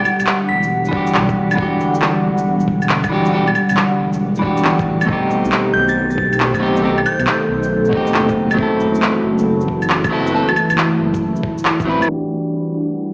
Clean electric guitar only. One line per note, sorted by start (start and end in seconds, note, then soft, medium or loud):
0.89 1.54 E3 medium
0.89 1.56 D4 medium
0.94 1.57 F#4 medium
0.94 1.59 G4 medium
1.55 3.08 E3 medium
1.55 3.09 D4 medium
1.60 3.11 F#4 medium
1.60 3.12 G4 medium
3.09 3.30 E3 medium
3.09 3.31 D4 medium
3.09 3.32 F#4 medium
3.13 3.32 G4 loud
3.31 3.48 E3 medium
3.31 3.49 D4 medium
3.31 3.49 F#4 medium
3.35 3.50 G4 loud
4.39 5.05 E3 medium
4.39 5.06 D4 medium
4.45 5.08 F#4 medium
4.45 5.09 G4 medium
5.04 6.58 B2 medium
5.04 6.58 A3 medium
5.04 6.59 C4 medium
5.10 6.61 D#4 medium
5.10 6.61 G4 medium
6.59 6.80 B2 loud
6.59 6.80 A3 medium
6.59 6.81 C4 medium
6.59 6.81 D#4 medium
6.59 6.82 G4 loud
6.81 6.98 B2 medium
6.81 6.98 A3 medium
6.81 6.99 C4 medium
6.81 6.99 D#4 medium
6.85 7.00 G4 loud
7.89 8.55 B2 medium
7.89 8.54 A3 medium
7.89 8.56 C4 medium
7.95 8.58 D#4 medium
7.95 8.59 G4 medium
8.54 10.08 F#3 medium
8.54 10.09 C4 medium
8.60 10.11 E4 medium
8.60 10.12 A4 medium
10.10 10.30 F#3 loud
10.10 10.31 C4 medium
10.10 10.32 E4 medium
10.10 10.33 A4 loud
10.32 10.48 F#3 medium
10.32 10.49 C4 medium
10.32 10.50 E4 medium
10.32 10.50 A4 loud
11.85 12.07 F#3 medium
11.85 12.07 C4 medium
11.85 12.08 E4 medium
11.89 12.09 B4 loud
12.05 13.14 E3 medium
12.05 13.14 D4 medium
12.13 13.14 G4 medium